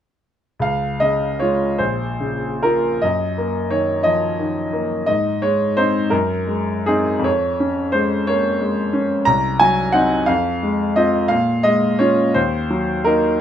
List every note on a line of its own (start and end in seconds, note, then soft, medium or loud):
0.59 1.74 C#2 soft
0.59 1.02 F5 medium
1.00 1.64 C#3 soft
1.00 1.40 D#5 medium
1.40 1.76 G#3 soft
1.40 1.76 F4 soft
1.40 1.79 C#5 soft
1.78 2.98 A#1 soft
1.78 2.62 C5 soft
2.20 2.87 C#3 soft
2.63 2.99 A#3 soft
2.63 2.99 F4 soft
2.63 3.02 A#4 medium
3.02 5.05 F#2 soft
3.02 3.71 D#5 medium
3.38 3.92 A#3 soft
3.71 4.26 D#3 soft
3.71 4.05 C#5 medium
4.03 4.39 F3 soft
4.03 5.05 D#5 medium
4.39 4.95 D#3 soft
4.73 5.08 A#3 soft
5.06 6.08 G#2 soft
5.06 5.42 D#5 medium
5.42 5.98 G#3 soft
5.42 5.77 C#5 medium
5.77 6.08 C4 soft
5.77 6.08 D#4 soft
5.77 6.11 C5 medium
6.10 7.21 F#2 soft
6.10 6.86 A#4 medium
6.47 7.10 G#3 soft
6.86 7.22 C4 soft
6.86 7.22 D#4 soft
6.86 7.25 G#4 medium
7.19 9.20 F2 soft
7.24 7.95 C#5 medium
7.60 8.14 C#4 soft
7.92 8.47 G#3 soft
7.92 8.27 C5 medium
8.27 8.61 A#3 soft
8.27 9.26 C#5 medium
8.61 9.13 G#3 soft
8.93 9.27 C#4 soft
9.25 10.25 C2 soft
9.25 9.59 A#5 medium
9.60 10.14 F#3 soft
9.60 9.93 G#5 medium
9.92 10.24 C4 soft
9.92 10.25 D#4 soft
9.92 10.27 F#5 medium
10.26 11.27 F2 soft
10.26 10.96 F5 medium
10.63 11.17 G#3 soft
10.96 11.27 C4 soft
10.96 11.27 F4 soft
10.96 11.30 D#5 medium
11.28 12.32 A#2 soft
11.28 11.64 F5 medium
11.63 12.21 G#3 soft
11.63 11.99 D#5 medium
11.99 12.32 C#4 soft
11.99 12.32 F4 soft
11.99 12.35 C#5 medium
12.34 13.38 D#2 soft
12.34 13.05 C5 medium
12.70 13.27 F#3 soft
13.04 13.38 A#3 soft
13.04 13.38 D#4 soft
13.04 13.41 A#4 medium